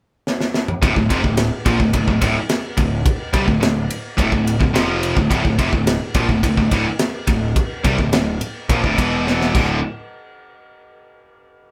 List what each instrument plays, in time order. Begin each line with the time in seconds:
0.27 snare
0.41 snare
0.54 snare
0.68 mid tom
0.82 picked electric bass D1, distorted electric guitar D2 A2, kick, ride
0.96 picked electric bass D1, distorted electric guitar D2 A2, kick
1.09 picked electric bass F1, distorted electric guitar F2 C3, kick, ride
1.23 picked electric bass D1, distorted electric guitar D2 A2, kick
1.37 snare, ride
1.65 picked electric bass A#1, distorted electric guitar A#2 F3, kick, ride
1.79 picked electric bass D1, distorted electric guitar D2 A2, kick
1.93 picked electric bass D1, distorted electric guitar D2 A2, kick, ride
2.07 picked electric bass D1, distorted electric guitar D2 A2, kick
2.21 picked electric bass D1, distorted electric guitar D2 A2, kick, ride
2.49 snare, ride
2.77 picked electric bass D1, distorted electric guitar D2 A2, kick, ride
3.06 kick, ride
3.33 picked electric bass C2, distorted electric guitar C3 G3, kick, ride
3.47 picked electric bass D1, distorted electric guitar D2 A2, kick
3.60 picked electric bass D1, distorted electric guitar D2 A2, snare, ride
3.91 ride
4.17 picked electric bass D1, distorted electric guitar D2 A2, kick, ride
4.32 picked electric bass D1, distorted electric guitar D2 A2, kick
4.47 ride
4.60 picked electric bass D1, distorted electric guitar D2 A2, kick
4.74 picked electric bass F1, distorted electric guitar F2 C3 F3, snare, ride
5.03 ride
5.16 picked electric bass D1, distorted electric guitar D2 A2, kick
5.30 picked electric bass D1, distorted electric guitar D2 A2, kick, ride
5.44 picked electric bass D1, distorted electric guitar D2 A2, kick
5.58 picked electric bass F1, distorted electric guitar F2 C3, kick, ride
5.72 picked electric bass D1, distorted electric guitar D2 A2, kick
5.87 snare, ride
6.14 picked electric bass A#1, distorted electric guitar A#2 F3, kick, ride
6.29 picked electric bass D1, distorted electric guitar D2 A2, kick
6.43 picked electric bass D1, distorted electric guitar D2 A2, kick, ride
6.57 picked electric bass D1, distorted electric guitar D2 A2, kick
6.71 picked electric bass D1, distorted electric guitar D2 A2, kick, ride
6.99 snare, ride
7.27 picked electric bass D1, distorted electric guitar D2 A2, kick, ride
7.56 kick, ride
7.84 picked electric bass C2, distorted electric guitar C3 G3, kick, ride
7.99 picked electric bass D1, distorted electric guitar D2 A2, kick
8.13 picked electric bass D1, distorted electric guitar D2 A2, snare, ride
8.41 ride
8.69 picked electric bass A#1, distorted electric guitar A#2 F3, kick, ride
8.84 picked electric bass D1, distorted electric guitar D2 A2, kick
8.98 picked electric bass E1, distorted electric guitar E2 B2 E3, kick, ride
9.27 snare
9.41 snare
9.55 picked electric bass D1, distorted electric guitar D2 A2 D3, kick, crash